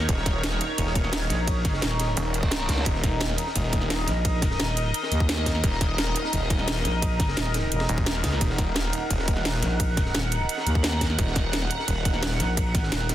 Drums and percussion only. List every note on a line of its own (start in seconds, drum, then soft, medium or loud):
0.00 snare soft
0.09 kick loud
0.09 closed hi-hat loud
0.09 ride medium
0.18 snare soft
0.26 kick loud
0.26 snare soft
0.26 closed hi-hat medium
0.26 ride medium
0.43 snare loud
0.43 closed hi-hat loud
0.52 snare soft
0.61 closed hi-hat medium
0.61 ride medium
0.78 kick medium
0.78 closed hi-hat loud
0.78 ride medium
0.87 snare soft
0.95 kick loud
0.95 closed hi-hat medium
0.95 ride medium
1.04 snare soft
1.04 ride soft
1.12 snare loud
1.12 closed hi-hat loud
1.12 ride medium
1.30 snare medium
1.30 snare soft
1.30 closed hi-hat medium
1.30 ride medium
1.47 kick loud
1.47 closed hi-hat loud
1.47 ride medium
1.65 kick loud
1.65 snare soft
1.65 closed hi-hat medium
1.65 ride medium
1.73 snare medium
1.81 snare loud
1.81 closed hi-hat loud
1.81 ride medium
1.91 snare soft
2.00 snare loud
2.00 closed hi-hat medium
2.00 ride medium
2.16 snare loud
2.16 closed hi-hat loud
2.16 ride medium
2.34 closed hi-hat medium
2.34 ride medium
2.43 kick loud
2.43 snare soft
2.51 snare loud
2.51 closed hi-hat loud
2.51 ride loud
2.60 snare soft
2.68 kick medium
2.68 snare medium
2.68 snare soft
2.68 closed hi-hat medium
2.68 ride medium
2.78 snare medium
2.86 kick loud
2.86 closed hi-hat loud
2.86 ride medium
2.95 snare soft
3.03 kick loud
3.03 snare medium
3.03 closed hi-hat medium
3.03 ride medium
3.20 snare loud
3.20 closed hi-hat loud
3.20 ride medium
3.30 snare medium
3.38 closed hi-hat medium
3.38 ride medium
3.47 snare soft
3.55 kick medium
3.55 closed hi-hat loud
3.55 ride loud
3.72 kick loud
3.72 closed hi-hat medium
3.72 ride medium
3.82 snare soft
3.82 ride soft
3.90 snare loud
3.90 closed hi-hat loud
3.90 ride medium
4.07 snare medium
4.07 snare soft
4.07 closed hi-hat medium
4.07 ride medium
4.25 kick loud
4.25 closed hi-hat loud
4.25 ride medium
4.42 kick loud
4.42 snare soft
4.42 closed hi-hat medium
4.42 ride medium
4.51 snare medium
4.60 snare loud
4.60 closed hi-hat medium
4.68 snare soft
4.77 closed hi-hat medium
4.77 ride medium
4.94 closed hi-hat loud
4.94 ride medium
5.03 snare medium
5.12 closed hi-hat medium
5.12 ride medium
5.20 kick loud
5.29 snare loud
5.29 closed hi-hat medium
5.29 ride medium
5.38 snare medium
5.46 kick medium
5.46 snare soft
5.46 closed hi-hat medium
5.46 ride medium
5.55 snare medium
5.64 kick loud
5.64 closed hi-hat medium
5.64 ride medium
5.72 snare soft
5.81 kick loud
5.81 snare soft
5.81 closed hi-hat medium
5.81 ride medium
5.98 snare loud
5.98 closed hi-hat medium
5.98 ride medium
6.07 snare soft
6.16 closed hi-hat medium
6.16 ride medium
6.24 snare soft
6.33 kick medium
6.33 closed hi-hat loud
6.33 ride loud
6.50 kick loud
6.50 closed hi-hat medium
6.50 ride medium
6.59 snare soft
6.59 ride soft
6.68 snare loud
6.68 closed hi-hat medium
6.85 snare medium
6.85 snare soft
6.85 closed hi-hat medium
6.85 ride medium
7.02 kick loud
7.02 closed hi-hat medium
7.02 ride medium
7.19 kick loud
7.19 snare soft
7.19 closed hi-hat medium
7.19 ride medium
7.28 snare medium
7.37 snare loud
7.37 closed hi-hat medium
7.37 ride loud
7.46 snare soft
7.54 snare loud
7.54 closed hi-hat medium
7.54 ride medium
7.72 closed hi-hat medium
7.72 ride medium
7.80 snare loud
7.80 ride medium
7.89 closed hi-hat medium
7.98 kick loud
7.98 ride medium
8.06 snare loud
8.06 closed hi-hat medium
8.06 ride medium
8.15 snare soft
8.24 kick medium
8.24 snare soft
8.24 closed hi-hat medium
8.24 ride medium
8.32 snare soft
8.41 kick loud
8.41 closed hi-hat medium
8.41 ride loud
8.50 snare soft
8.58 kick loud
8.58 snare soft
8.58 closed hi-hat medium
8.58 ride medium
8.76 snare loud
8.76 closed hi-hat medium
8.76 ride loud
8.84 snare soft
8.93 closed hi-hat medium
8.93 ride medium
9.10 kick medium
9.10 closed hi-hat medium
9.10 ride medium
9.19 snare soft
9.28 kick loud
9.28 closed hi-hat medium
9.28 ride medium
9.37 snare soft
9.37 ride soft
9.45 snare loud
9.45 closed hi-hat medium
9.45 ride medium
9.62 snare medium
9.62 snare soft
9.62 closed hi-hat medium
9.62 ride medium
9.80 kick loud
9.80 closed hi-hat loud
9.80 ride medium
9.97 kick loud
9.97 snare soft
9.97 closed hi-hat medium
9.97 ride medium
10.05 snare soft
10.14 snare loud
10.14 closed hi-hat loud
10.14 ride loud
10.23 snare soft
10.32 closed hi-hat medium
10.32 ride medium
10.49 closed hi-hat medium
10.49 ride medium
10.57 snare medium
10.67 closed hi-hat medium
10.67 ride medium
10.75 kick loud
10.83 snare loud
10.83 closed hi-hat medium
10.83 ride medium
10.93 snare soft
11.01 kick medium
11.01 snare medium
11.01 snare soft
11.01 closed hi-hat medium
11.01 ride medium
11.10 snare soft
11.19 kick loud
11.19 closed hi-hat loud
11.19 ride medium
11.27 snare soft
11.35 kick loud
11.35 snare soft
11.35 closed hi-hat medium
11.35 ride medium
11.53 snare loud
11.53 closed hi-hat loud
11.53 ride medium
11.62 snare soft
11.70 closed hi-hat medium
11.70 ride medium
11.79 snare soft
11.88 kick medium
11.88 closed hi-hat loud
11.88 ride medium
12.05 kick loud
12.05 closed hi-hat medium
12.05 ride medium
12.14 snare soft
12.14 ride soft
12.22 snare loud
12.22 closed hi-hat loud
12.22 ride medium
12.40 snare medium
12.40 snare soft
12.40 closed hi-hat medium
12.40 ride medium
12.57 kick loud
12.57 closed hi-hat loud
12.57 ride medium
12.74 kick loud
12.74 snare soft
12.74 closed hi-hat medium
12.74 ride medium
12.83 snare medium
12.92 snare loud
12.92 closed hi-hat loud
12.92 ride loud
13.01 snare soft
13.09 snare loud
13.09 closed hi-hat medium
13.09 ride medium